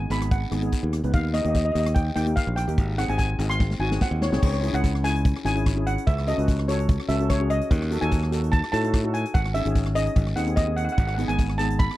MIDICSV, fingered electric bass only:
0, 0, Header, 1, 2, 480
1, 0, Start_track
1, 0, Key_signature, 4, "minor"
1, 0, Tempo, 410116
1, 1328, Time_signature, 4, 2, 24, 8
1, 14010, End_track
2, 0, Start_track
2, 0, Title_t, "Fingered electric bass"
2, 0, Program_c, 0, 33
2, 119, Note_on_c, 0, 32, 88
2, 520, Note_off_c, 0, 32, 0
2, 603, Note_on_c, 0, 32, 87
2, 803, Note_off_c, 0, 32, 0
2, 972, Note_on_c, 0, 39, 88
2, 1172, Note_off_c, 0, 39, 0
2, 1213, Note_on_c, 0, 37, 84
2, 1308, Note_off_c, 0, 37, 0
2, 1332, Note_on_c, 0, 39, 100
2, 1635, Note_off_c, 0, 39, 0
2, 1695, Note_on_c, 0, 39, 86
2, 1990, Note_off_c, 0, 39, 0
2, 2051, Note_on_c, 0, 39, 94
2, 2450, Note_off_c, 0, 39, 0
2, 2527, Note_on_c, 0, 39, 83
2, 2729, Note_off_c, 0, 39, 0
2, 2892, Note_on_c, 0, 34, 94
2, 3095, Note_off_c, 0, 34, 0
2, 3132, Note_on_c, 0, 39, 87
2, 3231, Note_off_c, 0, 39, 0
2, 3252, Note_on_c, 0, 32, 108
2, 3558, Note_off_c, 0, 32, 0
2, 3606, Note_on_c, 0, 32, 87
2, 3907, Note_off_c, 0, 32, 0
2, 3963, Note_on_c, 0, 32, 99
2, 4367, Note_off_c, 0, 32, 0
2, 4440, Note_on_c, 0, 32, 92
2, 4647, Note_off_c, 0, 32, 0
2, 4811, Note_on_c, 0, 39, 98
2, 5016, Note_off_c, 0, 39, 0
2, 5059, Note_on_c, 0, 36, 91
2, 5156, Note_off_c, 0, 36, 0
2, 5180, Note_on_c, 0, 37, 102
2, 5483, Note_off_c, 0, 37, 0
2, 5538, Note_on_c, 0, 37, 93
2, 6232, Note_off_c, 0, 37, 0
2, 6377, Note_on_c, 0, 32, 87
2, 6974, Note_off_c, 0, 32, 0
2, 7107, Note_on_c, 0, 37, 106
2, 7407, Note_off_c, 0, 37, 0
2, 7467, Note_on_c, 0, 37, 91
2, 8156, Note_off_c, 0, 37, 0
2, 8293, Note_on_c, 0, 37, 86
2, 8891, Note_off_c, 0, 37, 0
2, 9020, Note_on_c, 0, 39, 116
2, 9322, Note_off_c, 0, 39, 0
2, 9385, Note_on_c, 0, 39, 98
2, 10074, Note_off_c, 0, 39, 0
2, 10218, Note_on_c, 0, 45, 90
2, 10812, Note_off_c, 0, 45, 0
2, 10941, Note_on_c, 0, 32, 111
2, 11241, Note_off_c, 0, 32, 0
2, 11300, Note_on_c, 0, 32, 92
2, 11790, Note_off_c, 0, 32, 0
2, 11890, Note_on_c, 0, 32, 106
2, 12089, Note_off_c, 0, 32, 0
2, 12131, Note_on_c, 0, 39, 84
2, 12725, Note_off_c, 0, 39, 0
2, 12849, Note_on_c, 0, 32, 107
2, 13152, Note_off_c, 0, 32, 0
2, 13209, Note_on_c, 0, 32, 89
2, 13899, Note_off_c, 0, 32, 0
2, 14010, End_track
0, 0, End_of_file